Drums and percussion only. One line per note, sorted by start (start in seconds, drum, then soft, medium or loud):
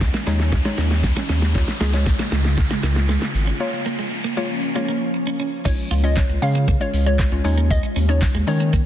0.01 kick loud
0.01 snare loud
0.01 closed hi-hat medium
0.01 tambourine medium
0.01 shaker medium
0.14 snare loud
0.14 closed hi-hat medium
0.14 shaker medium
0.27 snare loud
0.27 open hi-hat medium
0.27 tambourine soft
0.27 shaker soft
0.40 snare loud
0.40 closed hi-hat medium
0.40 shaker medium
0.52 kick loud
0.52 snare loud
0.52 closed hi-hat medium
0.52 tambourine soft
0.52 shaker medium
0.65 snare loud
0.65 closed hi-hat medium
0.65 shaker medium
0.78 snare loud
0.78 open hi-hat medium
0.78 tambourine soft
0.78 shaker medium
0.91 snare loud
0.91 closed hi-hat medium
0.91 shaker medium
1.04 kick loud
1.04 snare loud
1.04 closed hi-hat medium
1.04 tambourine medium
1.04 shaker medium
1.17 snare loud
1.17 closed hi-hat medium
1.17 shaker soft
1.29 snare loud
1.29 open hi-hat medium
1.29 tambourine soft
1.29 shaker medium
1.42 snare loud
1.42 closed hi-hat medium
1.42 shaker medium
1.55 kick loud
1.55 snare loud
1.55 closed hi-hat medium
1.55 tambourine soft
1.55 shaker medium
1.68 snare loud
1.68 closed hi-hat medium
1.68 shaker medium
1.81 snare loud
1.81 open hi-hat medium
1.81 tambourine medium
1.81 shaker medium
1.93 snare loud
1.93 closed hi-hat medium
1.93 shaker medium
2.06 kick loud
2.06 snare loud
2.06 closed hi-hat medium
2.06 tambourine medium
2.06 shaker medium
2.19 snare loud
2.19 closed hi-hat medium
2.19 shaker medium
2.32 snare loud
2.32 open hi-hat medium
2.32 tambourine soft
2.32 shaker soft
2.45 snare loud
2.45 closed hi-hat medium
2.45 shaker medium
2.58 kick loud
2.58 snare loud
2.58 closed hi-hat medium
2.58 tambourine soft
2.58 shaker medium
2.71 snare loud
2.71 closed hi-hat medium
2.71 shaker medium
2.83 snare loud
2.83 open hi-hat medium
2.83 tambourine soft
2.83 shaker medium
2.96 snare loud
2.96 closed hi-hat medium
2.96 shaker medium
3.09 snare loud
3.09 closed hi-hat medium
3.09 tambourine medium
3.09 shaker medium
3.22 snare loud
3.22 closed hi-hat soft
3.22 shaker soft
3.35 open hi-hat medium
3.35 tambourine soft
3.35 shaker medium
3.48 closed hi-hat medium
3.48 shaker medium
5.65 kick loud
5.65 closed hi-hat medium
5.65 crash loud
5.65 tambourine soft
5.65 shaker medium
5.78 closed hi-hat medium
5.78 shaker medium
5.91 open hi-hat medium
5.91 tambourine medium
5.91 shaker medium
6.04 closed hi-hat medium
6.04 shaker medium
6.17 kick loud
6.17 snare medium
6.17 clap loud
6.17 closed hi-hat medium
6.17 tambourine medium
6.17 shaker medium
6.30 closed hi-hat medium
6.30 shaker medium
6.42 open hi-hat medium
6.42 tambourine soft
6.42 shaker soft
6.55 closed hi-hat medium
6.55 shaker medium
6.68 kick loud
6.68 closed hi-hat medium
6.68 tambourine soft
6.68 shaker medium
6.81 closed hi-hat medium
6.81 shaker medium
6.94 open hi-hat medium
6.94 tambourine soft
6.94 shaker medium
7.07 closed hi-hat medium
7.07 shaker medium
7.19 kick loud
7.19 snare medium
7.19 clap loud
7.19 closed hi-hat medium
7.19 tambourine medium
7.19 shaker medium
7.32 closed hi-hat soft
7.32 shaker medium
7.45 open hi-hat medium
7.45 tambourine soft
7.45 shaker medium
7.58 closed hi-hat medium
7.58 shaker medium
7.71 kick loud
7.71 closed hi-hat medium
7.71 tambourine soft
7.71 shaker medium
7.84 closed hi-hat medium
7.84 shaker medium
7.96 open hi-hat medium
7.96 tambourine medium
7.96 shaker medium
8.09 closed hi-hat medium
8.09 shaker medium
8.22 kick loud
8.22 snare medium
8.22 clap loud
8.22 closed hi-hat medium
8.22 tambourine medium
8.22 shaker medium
8.35 closed hi-hat medium
8.35 shaker medium
8.47 open hi-hat medium
8.47 tambourine soft
8.47 shaker soft
8.60 closed hi-hat medium
8.60 shaker medium
8.73 kick loud
8.73 closed hi-hat medium
8.73 tambourine soft
8.73 shaker medium